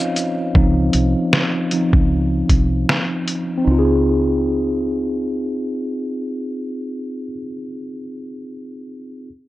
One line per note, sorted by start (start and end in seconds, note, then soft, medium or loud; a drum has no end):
0.00 0.55 F3 medium
0.00 0.56 C4 soft
0.00 0.57 D#4 medium
0.00 2.86 F4 medium
0.00 3.68 D#5 medium
0.00 2.85 F5 medium
0.16 closed hi-hat medium
0.16 shaker soft
0.55 0.89 C#2 loud
0.55 1.09 F3 medium
0.55 1.09 C4 medium
0.55 1.10 D#4 medium
0.55 kick loud
0.93 1.14 C2 medium
0.93 closed hi-hat medium
1.33 snare loud
1.71 2.07 F3 soft
1.71 2.07 C4 soft
1.71 2.08 D#4 medium
1.71 closed hi-hat medium
1.93 2.42 C#2 medium
1.93 kick medium
2.49 2.84 C2 medium
2.49 kick medium
2.49 closed hi-hat medium
2.89 snare loud
3.28 closed hi-hat medium
3.57 7.26 C4 medium
3.64 7.36 C#2 medium
3.64 7.33 D#4 medium
3.71 7.40 F4 medium
3.79 7.48 G#4 medium